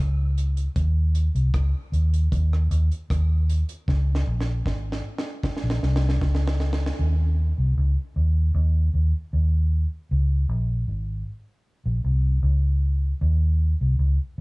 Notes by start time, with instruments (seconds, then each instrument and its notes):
0.00 fingered electric bass C#2
0.38 closed hi-hat
0.57 closed hi-hat
0.76 fingered electric bass D#2, kick, closed hi-hat
1.15 closed hi-hat
1.35 fingered electric bass C2, closed hi-hat
1.54 fingered electric bass C#2, kick, cross-stick, closed hi-hat
1.92 fingered electric bass D#2, closed hi-hat
2.14 closed hi-hat
2.32 fingered electric bass D#2, kick, closed hi-hat
2.53 cross-stick
2.71 fingered electric bass D#2, closed hi-hat
2.92 closed hi-hat
3.10 fingered electric bass D#2, kick, cross-stick, closed hi-hat
3.50 closed hi-hat
3.69 closed hi-hat
3.88 fingered electric bass C#2, kick, snare
4.15 snare
4.27 fingered electric bass A#1
4.41 snare
4.66 fingered electric bass G#1, kick, snare
4.92 snare
5.18 snare
5.43 kick, snare
5.57 snare
5.63 fingered electric bass A#1
5.70 snare
5.83 fingered electric bass C2, snare
5.96 snare
6.09 snare
6.21 fingered electric bass C#2, kick, snare
6.35 snare
6.48 snare
6.60 snare
6.73 snare
6.86 snare
6.99 fingered electric bass D#2
7.58 fingered electric bass C2
7.77 fingered electric bass C#2
8.16 fingered electric bass D#2
8.54 fingered electric bass D#2
8.94 fingered electric bass D#2
9.33 fingered electric bass D#2
10.11 fingered electric bass C#2
10.49 fingered electric bass A#1
10.88 fingered electric bass G#1
11.86 fingered electric bass A#1
12.04 fingered electric bass C2
12.42 fingered electric bass C#2
13.21 fingered electric bass D#2
13.81 fingered electric bass C2
13.99 fingered electric bass C#2